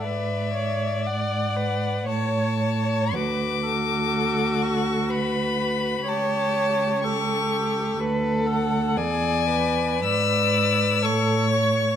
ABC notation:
X:1
M:3/4
L:1/8
Q:1/4=61
K:A
V:1 name="Violin"
e2 f2 a2 | d'3 c' b2 | a2 c'2 z f | g2 e'2 c'2 |]
V:2 name="Violin"
d4 c2 | F6 | =G2 G2 A2 | d2 d2 c2 |]
V:3 name="Viola"
B c d B c c | B A3 B2 | c2 A2 B A | G B3 A c |]
V:4 name="Cello" clef=bass
G,,4 A,,2 | D,,6 | C,,4 D,,2 | E,,2 G,,2 A,,2 |]